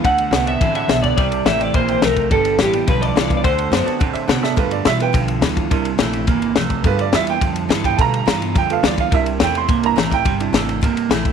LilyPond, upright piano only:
\new Staff \with { instrumentName = "Upright piano" } { \time 4/4 \key g \mixolydian \tempo 4 = 212 << { r1 | r1 | r1 | r2. a''4 |
<bes' b'>8 d''8 e''8 <b' g''>4 r4. | r1 | <bes' b'>8 d''8 e''8 g''4 r4 g''8 | <a'' bes''>2 g''8 f''8 d''8 f''8 |
e''8 r8 g''8 c'''4 bes''4 g''8~ | g''2~ g''8 r4. | } \\ { <a' d'' fis''>8 <a' d'' fis''>8 <a' d'' e''>8 <a' d'' fis''>8 <a' d'' a''>8 <a' d'' fis''>8 <a' d'' fis''>8 <a' d'' fis''>8 | <c'' e'' g''>8 <c'' e'' a''>8 <c'' e'' g''>8 <c'' e'' g''>8 <c'' e'' g''>8 <c'' e'' g''>8 <e'' g''>8 <c'' e'' g''>8 | <b' d'' g''>8 <b' d'' g''>8 <b' d'' f''>8 <b' d'' g''>8 <b' d'' f''>8 <b' d'' a''>8 <b' d''>8 <b' d'' f''>8 | <a' d'' fis''>8 <a' d'' fis''>8 <a' d'' fis''>8 <a' d'' a''>8 <a' d'' fis''>8 <a' d'' e''>8 <a' d'' fis''>8 <a' d'' e''>8 |
<a b f'>8 r2. r8 | <bes d' e'>8 r2. r8 | <a b f'>8 r2. r8 | <a b f'>8 r2 <a b f'>8 r4 |
<bes d' e'>4. r4 <bes d' e'>8 r4 | r8 <d' e'>4. r2 | } >> }